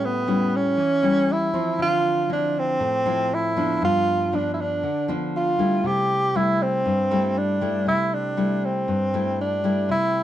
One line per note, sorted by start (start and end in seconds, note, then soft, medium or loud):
0.00 0.76 A2 medium
0.00 0.24 G3 medium
0.00 0.24 C#4 medium
0.00 0.24 E4 medium
0.05 0.57 B3 medium
0.27 0.78 G3 medium
0.27 0.78 C#4 medium
0.27 0.78 E4 medium
0.56 1.34 C#4 medium
0.77 1.77 E3 medium
1.03 1.50 G3 medium
1.03 1.50 C#4 medium
1.03 1.50 E4 medium
1.33 1.81 E4 medium
1.54 2.26 F3 medium
1.54 2.26 C4 medium
1.79 2.78 D3 medium
1.79 2.28 F4 loud
2.29 3.02 F3 soft
2.29 3.02 C4 medium
2.29 2.60 D4 medium
2.29 3.02 E4 medium
2.59 3.36 C4 medium
2.80 3.79 A2 medium
3.05 3.52 F3 medium
3.05 3.52 C4 medium
3.05 3.53 E4 medium
3.34 3.83 E4 medium
3.57 4.28 F3 medium
3.57 4.29 B3 medium
3.57 4.29 D4 medium
3.82 4.80 G2 medium
3.82 4.37 F4 loud
4.32 4.83 F3 soft
4.32 4.83 B3 medium
4.32 4.83 D4 medium
4.32 4.52 D4 medium
4.54 4.62 E4 medium
4.61 5.08 D4 medium
4.83 5.82 D3 medium
5.08 5.55 F3 medium
5.08 5.55 B3 medium
5.08 5.55 D4 medium
5.37 5.88 F4 medium
5.58 6.30 G3 medium
5.58 6.31 A3 medium
5.58 6.31 E4 medium
5.84 6.83 C3 medium
5.84 6.38 G4 loud
6.35 6.85 G3 medium
6.35 6.85 A3 medium
6.35 6.85 E4 medium
6.35 6.64 E4 medium
6.62 7.39 C4 medium
6.86 7.84 G2 medium
7.11 7.57 G3 medium
7.11 7.57 A3 medium
7.11 7.58 E4 medium
7.38 7.87 D4 medium
7.61 8.33 G3 medium
7.61 8.33 A3 medium
7.61 8.33 E4 medium
7.87 8.85 C3 medium
7.87 8.16 E4 medium
8.14 8.67 D4 medium
8.37 8.87 G3 soft
8.37 8.87 A3 medium
8.37 8.88 E4 medium
8.65 9.39 C4 medium
8.88 9.86 G2 medium
9.14 9.60 G3 medium
9.14 9.60 A3 medium
9.14 9.60 E4 medium
9.41 9.87 D4 medium
9.64 10.23 G3 medium
9.64 10.23 A3 medium
9.64 10.23 E4 medium
9.89 10.23 C3 medium
9.89 10.23 E4 loud